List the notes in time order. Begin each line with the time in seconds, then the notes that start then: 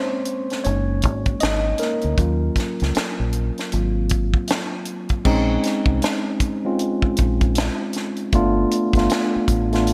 Already playing: G#3 A#3 C4 C#4 C5 C#5
0.25 closed hi-hat
0.50 snare, closed hi-hat
0.64 F#1 G#3 A#3 C#4 D#4 C#5, closed hi-hat
1.02 G#1, kick, closed hi-hat
1.25 kick, closed hi-hat
1.40 G#1 D#4 D#5, snare, closed hi-hat
1.78 A#3 A#4, snare, closed hi-hat
2.01 D2, closed hi-hat
2.18 D#2 F#3 C#4 F4, kick, closed hi-hat
2.56 kick, snare, closed hi-hat
2.80 C#2, snare, closed hi-hat
2.95 snare, closed hi-hat
3.20 A#1
3.33 closed hi-hat
3.58 snare, closed hi-hat
3.72 G#1 F#3 A#3 C4 F4, closed hi-hat
4.09 kick, closed hi-hat
4.34 kick
4.48 snare, closed hi-hat
4.85 closed hi-hat
5.09 kick, closed hi-hat
5.25 A#1 G#3 C4 C#4 D#4, kick, crash
5.63 snare, closed hi-hat
5.86 C2, kick
6.02 snare, closed hi-hat
6.40 kick, closed hi-hat
6.65 G#3 C4 C#4 F4
6.79 closed hi-hat
7.02 kick
7.17 A#1, kick, closed hi-hat
7.41 kick, closed hi-hat
7.55 snare, closed hi-hat
7.93 snare, closed hi-hat
8.16 closed hi-hat
8.32 G1 A3 B3 D4 F4, kick, closed hi-hat
8.71 closed hi-hat
8.93 G1 A3 B3 D4 F4, kick, closed hi-hat
8.98 snare
9.10 snare, closed hi-hat
9.36 muted fingered electric bass stroke
9.48 A1, kick, closed hi-hat
9.72 A3 B3 D4 F4, snare, closed hi-hat
9.87 closed hi-hat